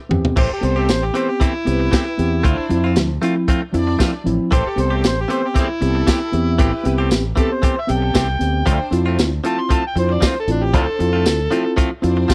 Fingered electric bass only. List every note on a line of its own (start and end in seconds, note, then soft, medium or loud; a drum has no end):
0.11 0.22 E2 medium
0.37 0.48 A1 medium
0.51 muted fingered electric bass stroke soft
0.63 0.89 C2 medium
0.89 1.09 A1 medium
1.67 1.88 C2 medium
2.19 2.45 E2 medium
2.45 2.56 D2 medium
2.59 muted fingered electric bass stroke soft
2.71 2.97 F2 medium
2.97 3.17 D2 medium
3.74 3.95 F2 medium
4.26 4.37 A1 medium
4.52 4.63 A1 medium
4.66 muted fingered electric bass stroke soft
4.78 5.04 C2 medium
5.04 5.24 A1 medium
5.82 6.02 C2 medium
6.33 6.61 E2 medium
6.59 6.70 A1 medium
6.74 muted fingered electric bass stroke soft
6.86 7.11 C2 medium
7.11 7.32 A1 medium
7.90 8.13 B1 medium
8.15 8.38 C2 medium
8.41 8.66 D2 medium
8.67 8.78 D2 medium
8.92 9.18 F2 medium
9.18 9.39 D2 medium
9.96 10.17 F2 medium
10.48 10.74 A1 medium
10.74 10.85 D2 medium
11.00 11.27 F2 medium
11.27 11.47 D2 loud
12.04 12.24 F2 medium